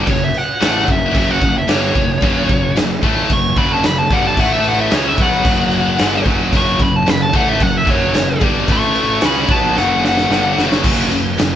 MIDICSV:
0, 0, Header, 1, 5, 480
1, 0, Start_track
1, 0, Key_signature, 3, "minor"
1, 0, Tempo, 538117
1, 70, Time_signature, 4, 2, 24, 8
1, 10307, End_track
2, 0, Start_track
2, 0, Title_t, "Lead electric guitar"
2, 0, Program_c, 0, 29
2, 95, Note_on_c, 0, 73, 108
2, 199, Note_off_c, 0, 73, 0
2, 213, Note_on_c, 0, 76, 104
2, 334, Note_off_c, 0, 76, 0
2, 334, Note_on_c, 0, 78, 96
2, 787, Note_off_c, 0, 78, 0
2, 820, Note_on_c, 0, 76, 94
2, 1038, Note_off_c, 0, 76, 0
2, 1055, Note_on_c, 0, 76, 91
2, 1165, Note_off_c, 0, 76, 0
2, 1165, Note_on_c, 0, 78, 100
2, 1390, Note_off_c, 0, 78, 0
2, 1409, Note_on_c, 0, 76, 93
2, 1515, Note_off_c, 0, 76, 0
2, 1525, Note_on_c, 0, 73, 114
2, 2448, Note_off_c, 0, 73, 0
2, 2974, Note_on_c, 0, 85, 100
2, 3189, Note_off_c, 0, 85, 0
2, 3192, Note_on_c, 0, 83, 94
2, 3307, Note_off_c, 0, 83, 0
2, 3328, Note_on_c, 0, 81, 94
2, 3436, Note_off_c, 0, 81, 0
2, 3436, Note_on_c, 0, 83, 112
2, 3551, Note_off_c, 0, 83, 0
2, 3551, Note_on_c, 0, 81, 90
2, 3666, Note_off_c, 0, 81, 0
2, 3688, Note_on_c, 0, 78, 94
2, 3810, Note_off_c, 0, 78, 0
2, 3810, Note_on_c, 0, 81, 95
2, 3922, Note_off_c, 0, 81, 0
2, 3922, Note_on_c, 0, 78, 98
2, 4039, Note_off_c, 0, 78, 0
2, 4039, Note_on_c, 0, 76, 103
2, 4150, Note_off_c, 0, 76, 0
2, 4179, Note_on_c, 0, 78, 90
2, 4280, Note_off_c, 0, 78, 0
2, 4286, Note_on_c, 0, 76, 99
2, 4415, Note_off_c, 0, 76, 0
2, 4415, Note_on_c, 0, 73, 101
2, 4529, Note_off_c, 0, 73, 0
2, 4529, Note_on_c, 0, 76, 105
2, 4652, Note_off_c, 0, 76, 0
2, 4652, Note_on_c, 0, 78, 115
2, 5572, Note_off_c, 0, 78, 0
2, 5861, Note_on_c, 0, 85, 118
2, 6078, Note_off_c, 0, 85, 0
2, 6089, Note_on_c, 0, 83, 95
2, 6208, Note_off_c, 0, 83, 0
2, 6208, Note_on_c, 0, 81, 93
2, 6329, Note_off_c, 0, 81, 0
2, 6329, Note_on_c, 0, 83, 95
2, 6442, Note_off_c, 0, 83, 0
2, 6442, Note_on_c, 0, 81, 100
2, 6552, Note_off_c, 0, 81, 0
2, 6568, Note_on_c, 0, 78, 108
2, 6682, Note_off_c, 0, 78, 0
2, 6682, Note_on_c, 0, 76, 101
2, 6799, Note_off_c, 0, 76, 0
2, 6799, Note_on_c, 0, 78, 100
2, 6932, Note_off_c, 0, 78, 0
2, 6932, Note_on_c, 0, 76, 97
2, 7037, Note_off_c, 0, 76, 0
2, 7048, Note_on_c, 0, 73, 98
2, 7505, Note_off_c, 0, 73, 0
2, 7781, Note_on_c, 0, 85, 108
2, 8231, Note_off_c, 0, 85, 0
2, 8258, Note_on_c, 0, 83, 101
2, 8477, Note_off_c, 0, 83, 0
2, 8487, Note_on_c, 0, 81, 101
2, 8712, Note_off_c, 0, 81, 0
2, 8724, Note_on_c, 0, 78, 109
2, 8950, Note_off_c, 0, 78, 0
2, 8969, Note_on_c, 0, 78, 105
2, 9426, Note_off_c, 0, 78, 0
2, 10307, End_track
3, 0, Start_track
3, 0, Title_t, "Distorted electric guitar"
3, 0, Program_c, 1, 30
3, 71, Note_on_c, 1, 42, 70
3, 71, Note_on_c, 1, 49, 79
3, 262, Note_off_c, 1, 42, 0
3, 262, Note_off_c, 1, 49, 0
3, 543, Note_on_c, 1, 45, 93
3, 546, Note_on_c, 1, 52, 90
3, 550, Note_on_c, 1, 57, 93
3, 779, Note_off_c, 1, 45, 0
3, 780, Note_off_c, 1, 52, 0
3, 782, Note_off_c, 1, 57, 0
3, 782, Note_on_c, 1, 42, 61
3, 788, Note_on_c, 1, 49, 74
3, 977, Note_off_c, 1, 42, 0
3, 980, Note_off_c, 1, 49, 0
3, 1014, Note_on_c, 1, 42, 98
3, 1021, Note_on_c, 1, 49, 101
3, 1022, Note_on_c, 1, 54, 100
3, 1249, Note_off_c, 1, 42, 0
3, 1253, Note_off_c, 1, 49, 0
3, 1258, Note_off_c, 1, 54, 0
3, 1260, Note_on_c, 1, 42, 61
3, 1263, Note_on_c, 1, 49, 69
3, 1456, Note_off_c, 1, 42, 0
3, 1458, Note_off_c, 1, 49, 0
3, 1497, Note_on_c, 1, 43, 97
3, 1506, Note_on_c, 1, 55, 109
3, 1507, Note_on_c, 1, 50, 96
3, 1735, Note_off_c, 1, 43, 0
3, 1740, Note_off_c, 1, 50, 0
3, 1740, Note_off_c, 1, 55, 0
3, 1743, Note_on_c, 1, 42, 68
3, 1747, Note_on_c, 1, 49, 70
3, 1938, Note_off_c, 1, 42, 0
3, 1940, Note_off_c, 1, 49, 0
3, 1985, Note_on_c, 1, 42, 96
3, 1996, Note_on_c, 1, 49, 107
3, 1996, Note_on_c, 1, 54, 113
3, 2210, Note_off_c, 1, 42, 0
3, 2212, Note_off_c, 1, 49, 0
3, 2220, Note_on_c, 1, 42, 73
3, 2223, Note_on_c, 1, 49, 74
3, 2225, Note_off_c, 1, 54, 0
3, 2416, Note_off_c, 1, 42, 0
3, 2417, Note_off_c, 1, 49, 0
3, 2465, Note_on_c, 1, 42, 62
3, 2467, Note_on_c, 1, 49, 76
3, 2658, Note_off_c, 1, 42, 0
3, 2659, Note_off_c, 1, 49, 0
3, 2705, Note_on_c, 1, 45, 90
3, 2708, Note_on_c, 1, 52, 91
3, 2715, Note_on_c, 1, 57, 109
3, 2939, Note_off_c, 1, 45, 0
3, 2941, Note_off_c, 1, 52, 0
3, 2941, Note_on_c, 1, 42, 72
3, 2942, Note_on_c, 1, 49, 77
3, 2944, Note_off_c, 1, 57, 0
3, 3137, Note_off_c, 1, 42, 0
3, 3137, Note_off_c, 1, 49, 0
3, 3191, Note_on_c, 1, 42, 91
3, 3191, Note_on_c, 1, 49, 99
3, 3202, Note_on_c, 1, 54, 95
3, 3415, Note_off_c, 1, 42, 0
3, 3419, Note_off_c, 1, 49, 0
3, 3426, Note_on_c, 1, 42, 62
3, 3428, Note_off_c, 1, 54, 0
3, 3430, Note_on_c, 1, 49, 69
3, 3619, Note_off_c, 1, 42, 0
3, 3621, Note_off_c, 1, 49, 0
3, 3675, Note_on_c, 1, 43, 100
3, 3679, Note_on_c, 1, 50, 97
3, 3680, Note_on_c, 1, 55, 94
3, 3904, Note_off_c, 1, 43, 0
3, 3904, Note_off_c, 1, 50, 0
3, 3904, Note_on_c, 1, 45, 94
3, 3909, Note_off_c, 1, 55, 0
3, 3909, Note_on_c, 1, 52, 103
3, 3911, Note_on_c, 1, 57, 116
3, 4377, Note_off_c, 1, 45, 0
3, 4380, Note_off_c, 1, 52, 0
3, 4380, Note_on_c, 1, 49, 98
3, 4382, Note_off_c, 1, 57, 0
3, 4383, Note_on_c, 1, 56, 96
3, 4393, Note_on_c, 1, 61, 97
3, 4617, Note_off_c, 1, 49, 0
3, 4618, Note_off_c, 1, 56, 0
3, 4620, Note_on_c, 1, 47, 97
3, 4623, Note_off_c, 1, 61, 0
3, 4630, Note_on_c, 1, 54, 100
3, 4632, Note_on_c, 1, 59, 100
3, 4857, Note_off_c, 1, 47, 0
3, 4859, Note_off_c, 1, 54, 0
3, 4861, Note_on_c, 1, 42, 96
3, 4861, Note_on_c, 1, 49, 105
3, 4863, Note_off_c, 1, 59, 0
3, 4870, Note_on_c, 1, 54, 113
3, 5337, Note_off_c, 1, 42, 0
3, 5337, Note_off_c, 1, 49, 0
3, 5340, Note_on_c, 1, 43, 90
3, 5342, Note_off_c, 1, 54, 0
3, 5346, Note_on_c, 1, 50, 101
3, 5350, Note_on_c, 1, 55, 109
3, 5575, Note_off_c, 1, 43, 0
3, 5579, Note_on_c, 1, 42, 89
3, 5580, Note_off_c, 1, 50, 0
3, 5582, Note_off_c, 1, 55, 0
3, 5585, Note_on_c, 1, 49, 98
3, 5590, Note_on_c, 1, 54, 106
3, 5813, Note_off_c, 1, 42, 0
3, 5817, Note_off_c, 1, 49, 0
3, 5820, Note_off_c, 1, 54, 0
3, 5824, Note_on_c, 1, 42, 89
3, 5828, Note_on_c, 1, 49, 97
3, 5831, Note_on_c, 1, 54, 111
3, 6054, Note_off_c, 1, 42, 0
3, 6055, Note_off_c, 1, 49, 0
3, 6062, Note_off_c, 1, 54, 0
3, 6065, Note_on_c, 1, 42, 77
3, 6066, Note_on_c, 1, 49, 76
3, 6259, Note_off_c, 1, 42, 0
3, 6259, Note_off_c, 1, 49, 0
3, 6300, Note_on_c, 1, 42, 70
3, 6308, Note_on_c, 1, 49, 74
3, 6496, Note_off_c, 1, 42, 0
3, 6500, Note_off_c, 1, 49, 0
3, 6540, Note_on_c, 1, 45, 97
3, 6546, Note_on_c, 1, 52, 104
3, 6554, Note_on_c, 1, 57, 107
3, 6777, Note_off_c, 1, 45, 0
3, 6780, Note_off_c, 1, 52, 0
3, 6784, Note_off_c, 1, 57, 0
3, 6788, Note_on_c, 1, 42, 66
3, 6793, Note_on_c, 1, 49, 81
3, 6980, Note_off_c, 1, 42, 0
3, 6983, Note_off_c, 1, 49, 0
3, 7022, Note_on_c, 1, 42, 101
3, 7025, Note_on_c, 1, 49, 106
3, 7030, Note_on_c, 1, 54, 105
3, 7250, Note_off_c, 1, 42, 0
3, 7255, Note_off_c, 1, 49, 0
3, 7261, Note_on_c, 1, 42, 69
3, 7262, Note_off_c, 1, 54, 0
3, 7266, Note_on_c, 1, 49, 80
3, 7457, Note_off_c, 1, 42, 0
3, 7459, Note_off_c, 1, 49, 0
3, 7504, Note_on_c, 1, 43, 108
3, 7507, Note_on_c, 1, 50, 102
3, 7512, Note_on_c, 1, 55, 109
3, 7739, Note_off_c, 1, 43, 0
3, 7741, Note_off_c, 1, 50, 0
3, 7744, Note_off_c, 1, 55, 0
3, 7744, Note_on_c, 1, 45, 102
3, 7751, Note_on_c, 1, 52, 102
3, 7755, Note_on_c, 1, 57, 108
3, 8220, Note_off_c, 1, 45, 0
3, 8223, Note_off_c, 1, 52, 0
3, 8225, Note_off_c, 1, 57, 0
3, 8227, Note_on_c, 1, 49, 95
3, 8231, Note_on_c, 1, 56, 109
3, 8241, Note_on_c, 1, 61, 116
3, 8461, Note_off_c, 1, 49, 0
3, 8463, Note_off_c, 1, 56, 0
3, 8464, Note_on_c, 1, 47, 90
3, 8468, Note_off_c, 1, 61, 0
3, 8470, Note_on_c, 1, 54, 107
3, 8472, Note_on_c, 1, 59, 102
3, 8700, Note_off_c, 1, 47, 0
3, 8703, Note_off_c, 1, 54, 0
3, 8704, Note_off_c, 1, 59, 0
3, 8714, Note_on_c, 1, 42, 100
3, 8718, Note_on_c, 1, 49, 100
3, 8722, Note_on_c, 1, 54, 120
3, 9185, Note_off_c, 1, 42, 0
3, 9187, Note_off_c, 1, 49, 0
3, 9189, Note_off_c, 1, 54, 0
3, 9192, Note_on_c, 1, 43, 94
3, 9199, Note_on_c, 1, 50, 104
3, 9201, Note_on_c, 1, 55, 102
3, 9424, Note_off_c, 1, 43, 0
3, 9428, Note_off_c, 1, 50, 0
3, 9429, Note_off_c, 1, 55, 0
3, 9437, Note_on_c, 1, 42, 94
3, 9445, Note_on_c, 1, 49, 96
3, 9448, Note_on_c, 1, 54, 102
3, 9658, Note_off_c, 1, 42, 0
3, 9665, Note_off_c, 1, 49, 0
3, 9669, Note_off_c, 1, 54, 0
3, 9669, Note_on_c, 1, 42, 104
3, 9675, Note_on_c, 1, 49, 100
3, 9680, Note_on_c, 1, 54, 125
3, 9903, Note_off_c, 1, 42, 0
3, 9906, Note_off_c, 1, 49, 0
3, 9908, Note_off_c, 1, 54, 0
3, 9918, Note_on_c, 1, 42, 68
3, 9921, Note_on_c, 1, 49, 79
3, 10107, Note_off_c, 1, 42, 0
3, 10108, Note_off_c, 1, 49, 0
3, 10157, Note_on_c, 1, 42, 66
3, 10162, Note_on_c, 1, 49, 72
3, 10307, Note_off_c, 1, 42, 0
3, 10307, Note_off_c, 1, 49, 0
3, 10307, End_track
4, 0, Start_track
4, 0, Title_t, "Picked electric bass"
4, 0, Program_c, 2, 34
4, 67, Note_on_c, 2, 30, 79
4, 291, Note_off_c, 2, 30, 0
4, 547, Note_on_c, 2, 33, 103
4, 771, Note_off_c, 2, 33, 0
4, 783, Note_on_c, 2, 30, 81
4, 1009, Note_off_c, 2, 30, 0
4, 1025, Note_on_c, 2, 30, 89
4, 1250, Note_off_c, 2, 30, 0
4, 1260, Note_on_c, 2, 30, 78
4, 1487, Note_off_c, 2, 30, 0
4, 1513, Note_on_c, 2, 31, 91
4, 1734, Note_off_c, 2, 31, 0
4, 1743, Note_on_c, 2, 30, 84
4, 1968, Note_off_c, 2, 30, 0
4, 1984, Note_on_c, 2, 30, 95
4, 2209, Note_off_c, 2, 30, 0
4, 2223, Note_on_c, 2, 30, 84
4, 2449, Note_off_c, 2, 30, 0
4, 2462, Note_on_c, 2, 30, 78
4, 2688, Note_off_c, 2, 30, 0
4, 2700, Note_on_c, 2, 33, 92
4, 2927, Note_off_c, 2, 33, 0
4, 2942, Note_on_c, 2, 30, 79
4, 3168, Note_off_c, 2, 30, 0
4, 3183, Note_on_c, 2, 30, 97
4, 3408, Note_off_c, 2, 30, 0
4, 3426, Note_on_c, 2, 30, 80
4, 3650, Note_off_c, 2, 30, 0
4, 3664, Note_on_c, 2, 31, 92
4, 3889, Note_off_c, 2, 31, 0
4, 3898, Note_on_c, 2, 33, 95
4, 4349, Note_off_c, 2, 33, 0
4, 4390, Note_on_c, 2, 37, 99
4, 4612, Note_off_c, 2, 37, 0
4, 4620, Note_on_c, 2, 35, 98
4, 4847, Note_off_c, 2, 35, 0
4, 4862, Note_on_c, 2, 30, 94
4, 5311, Note_off_c, 2, 30, 0
4, 5346, Note_on_c, 2, 31, 101
4, 5570, Note_off_c, 2, 31, 0
4, 5583, Note_on_c, 2, 30, 97
4, 5808, Note_off_c, 2, 30, 0
4, 5820, Note_on_c, 2, 30, 107
4, 6047, Note_off_c, 2, 30, 0
4, 6065, Note_on_c, 2, 30, 77
4, 6290, Note_off_c, 2, 30, 0
4, 6305, Note_on_c, 2, 30, 81
4, 6530, Note_off_c, 2, 30, 0
4, 6546, Note_on_c, 2, 33, 93
4, 6771, Note_off_c, 2, 33, 0
4, 6783, Note_on_c, 2, 30, 88
4, 7009, Note_off_c, 2, 30, 0
4, 7021, Note_on_c, 2, 30, 102
4, 7248, Note_off_c, 2, 30, 0
4, 7270, Note_on_c, 2, 30, 82
4, 7493, Note_off_c, 2, 30, 0
4, 7503, Note_on_c, 2, 31, 107
4, 7729, Note_off_c, 2, 31, 0
4, 7744, Note_on_c, 2, 33, 97
4, 8193, Note_off_c, 2, 33, 0
4, 8225, Note_on_c, 2, 37, 100
4, 8451, Note_off_c, 2, 37, 0
4, 8462, Note_on_c, 2, 35, 98
4, 8689, Note_off_c, 2, 35, 0
4, 8708, Note_on_c, 2, 30, 97
4, 9156, Note_off_c, 2, 30, 0
4, 9182, Note_on_c, 2, 31, 97
4, 9409, Note_off_c, 2, 31, 0
4, 9427, Note_on_c, 2, 30, 101
4, 9652, Note_off_c, 2, 30, 0
4, 9674, Note_on_c, 2, 30, 98
4, 9896, Note_off_c, 2, 30, 0
4, 9911, Note_on_c, 2, 30, 84
4, 10135, Note_off_c, 2, 30, 0
4, 10157, Note_on_c, 2, 30, 86
4, 10307, Note_off_c, 2, 30, 0
4, 10307, End_track
5, 0, Start_track
5, 0, Title_t, "Drums"
5, 61, Note_on_c, 9, 49, 86
5, 65, Note_on_c, 9, 36, 90
5, 150, Note_off_c, 9, 49, 0
5, 154, Note_off_c, 9, 36, 0
5, 304, Note_on_c, 9, 49, 68
5, 393, Note_off_c, 9, 49, 0
5, 548, Note_on_c, 9, 49, 91
5, 557, Note_on_c, 9, 38, 115
5, 638, Note_off_c, 9, 49, 0
5, 647, Note_off_c, 9, 38, 0
5, 786, Note_on_c, 9, 36, 90
5, 789, Note_on_c, 9, 49, 63
5, 875, Note_off_c, 9, 36, 0
5, 879, Note_off_c, 9, 49, 0
5, 1024, Note_on_c, 9, 36, 103
5, 1031, Note_on_c, 9, 49, 86
5, 1114, Note_off_c, 9, 36, 0
5, 1120, Note_off_c, 9, 49, 0
5, 1264, Note_on_c, 9, 36, 94
5, 1266, Note_on_c, 9, 49, 65
5, 1353, Note_off_c, 9, 36, 0
5, 1355, Note_off_c, 9, 49, 0
5, 1499, Note_on_c, 9, 49, 83
5, 1508, Note_on_c, 9, 38, 111
5, 1588, Note_off_c, 9, 49, 0
5, 1597, Note_off_c, 9, 38, 0
5, 1743, Note_on_c, 9, 36, 92
5, 1744, Note_on_c, 9, 49, 57
5, 1832, Note_off_c, 9, 36, 0
5, 1833, Note_off_c, 9, 49, 0
5, 1983, Note_on_c, 9, 36, 109
5, 1985, Note_on_c, 9, 49, 75
5, 2072, Note_off_c, 9, 36, 0
5, 2074, Note_off_c, 9, 49, 0
5, 2224, Note_on_c, 9, 36, 94
5, 2230, Note_on_c, 9, 49, 57
5, 2314, Note_off_c, 9, 36, 0
5, 2319, Note_off_c, 9, 49, 0
5, 2465, Note_on_c, 9, 49, 79
5, 2474, Note_on_c, 9, 38, 117
5, 2555, Note_off_c, 9, 49, 0
5, 2563, Note_off_c, 9, 38, 0
5, 2702, Note_on_c, 9, 36, 107
5, 2702, Note_on_c, 9, 49, 60
5, 2791, Note_off_c, 9, 36, 0
5, 2791, Note_off_c, 9, 49, 0
5, 2942, Note_on_c, 9, 49, 82
5, 2943, Note_on_c, 9, 36, 91
5, 3032, Note_off_c, 9, 36, 0
5, 3032, Note_off_c, 9, 49, 0
5, 3176, Note_on_c, 9, 49, 58
5, 3181, Note_on_c, 9, 36, 103
5, 3265, Note_off_c, 9, 49, 0
5, 3270, Note_off_c, 9, 36, 0
5, 3417, Note_on_c, 9, 49, 76
5, 3426, Note_on_c, 9, 38, 109
5, 3506, Note_off_c, 9, 49, 0
5, 3515, Note_off_c, 9, 38, 0
5, 3662, Note_on_c, 9, 36, 106
5, 3663, Note_on_c, 9, 49, 61
5, 3751, Note_off_c, 9, 36, 0
5, 3752, Note_off_c, 9, 49, 0
5, 3898, Note_on_c, 9, 49, 85
5, 3900, Note_on_c, 9, 36, 105
5, 3988, Note_off_c, 9, 49, 0
5, 3990, Note_off_c, 9, 36, 0
5, 4144, Note_on_c, 9, 49, 61
5, 4233, Note_off_c, 9, 49, 0
5, 4378, Note_on_c, 9, 49, 87
5, 4387, Note_on_c, 9, 38, 121
5, 4467, Note_off_c, 9, 49, 0
5, 4476, Note_off_c, 9, 38, 0
5, 4621, Note_on_c, 9, 36, 108
5, 4624, Note_on_c, 9, 49, 66
5, 4710, Note_off_c, 9, 36, 0
5, 4714, Note_off_c, 9, 49, 0
5, 4861, Note_on_c, 9, 36, 115
5, 4861, Note_on_c, 9, 49, 85
5, 4950, Note_off_c, 9, 36, 0
5, 4950, Note_off_c, 9, 49, 0
5, 5096, Note_on_c, 9, 49, 67
5, 5185, Note_off_c, 9, 49, 0
5, 5340, Note_on_c, 9, 49, 85
5, 5348, Note_on_c, 9, 38, 114
5, 5429, Note_off_c, 9, 49, 0
5, 5438, Note_off_c, 9, 38, 0
5, 5582, Note_on_c, 9, 36, 103
5, 5584, Note_on_c, 9, 49, 62
5, 5671, Note_off_c, 9, 36, 0
5, 5673, Note_off_c, 9, 49, 0
5, 5822, Note_on_c, 9, 36, 107
5, 5826, Note_on_c, 9, 49, 85
5, 5911, Note_off_c, 9, 36, 0
5, 5915, Note_off_c, 9, 49, 0
5, 6062, Note_on_c, 9, 36, 89
5, 6066, Note_on_c, 9, 49, 58
5, 6151, Note_off_c, 9, 36, 0
5, 6155, Note_off_c, 9, 49, 0
5, 6305, Note_on_c, 9, 49, 83
5, 6314, Note_on_c, 9, 38, 118
5, 6394, Note_off_c, 9, 49, 0
5, 6403, Note_off_c, 9, 38, 0
5, 6544, Note_on_c, 9, 36, 109
5, 6551, Note_on_c, 9, 49, 56
5, 6633, Note_off_c, 9, 36, 0
5, 6640, Note_off_c, 9, 49, 0
5, 6783, Note_on_c, 9, 36, 91
5, 6788, Note_on_c, 9, 49, 77
5, 6872, Note_off_c, 9, 36, 0
5, 6877, Note_off_c, 9, 49, 0
5, 7022, Note_on_c, 9, 36, 107
5, 7025, Note_on_c, 9, 49, 59
5, 7111, Note_off_c, 9, 36, 0
5, 7114, Note_off_c, 9, 49, 0
5, 7261, Note_on_c, 9, 49, 85
5, 7270, Note_on_c, 9, 38, 107
5, 7351, Note_off_c, 9, 49, 0
5, 7360, Note_off_c, 9, 38, 0
5, 7505, Note_on_c, 9, 36, 108
5, 7510, Note_on_c, 9, 49, 59
5, 7594, Note_off_c, 9, 36, 0
5, 7599, Note_off_c, 9, 49, 0
5, 7745, Note_on_c, 9, 36, 99
5, 7747, Note_on_c, 9, 49, 77
5, 7834, Note_off_c, 9, 36, 0
5, 7837, Note_off_c, 9, 49, 0
5, 7986, Note_on_c, 9, 49, 67
5, 8075, Note_off_c, 9, 49, 0
5, 8216, Note_on_c, 9, 49, 95
5, 8225, Note_on_c, 9, 38, 124
5, 8305, Note_off_c, 9, 49, 0
5, 8314, Note_off_c, 9, 38, 0
5, 8459, Note_on_c, 9, 49, 66
5, 8463, Note_on_c, 9, 36, 109
5, 8548, Note_off_c, 9, 49, 0
5, 8552, Note_off_c, 9, 36, 0
5, 8712, Note_on_c, 9, 38, 65
5, 8801, Note_off_c, 9, 38, 0
5, 8958, Note_on_c, 9, 38, 78
5, 9047, Note_off_c, 9, 38, 0
5, 9076, Note_on_c, 9, 38, 74
5, 9165, Note_off_c, 9, 38, 0
5, 9202, Note_on_c, 9, 38, 91
5, 9292, Note_off_c, 9, 38, 0
5, 9441, Note_on_c, 9, 38, 93
5, 9530, Note_off_c, 9, 38, 0
5, 9563, Note_on_c, 9, 38, 99
5, 9652, Note_off_c, 9, 38, 0
5, 9672, Note_on_c, 9, 36, 110
5, 9676, Note_on_c, 9, 49, 83
5, 9676, Note_on_c, 9, 57, 127
5, 9761, Note_off_c, 9, 36, 0
5, 9765, Note_off_c, 9, 49, 0
5, 9765, Note_off_c, 9, 57, 0
5, 9917, Note_on_c, 9, 49, 66
5, 10006, Note_off_c, 9, 49, 0
5, 10157, Note_on_c, 9, 49, 89
5, 10166, Note_on_c, 9, 38, 114
5, 10246, Note_off_c, 9, 49, 0
5, 10255, Note_off_c, 9, 38, 0
5, 10307, End_track
0, 0, End_of_file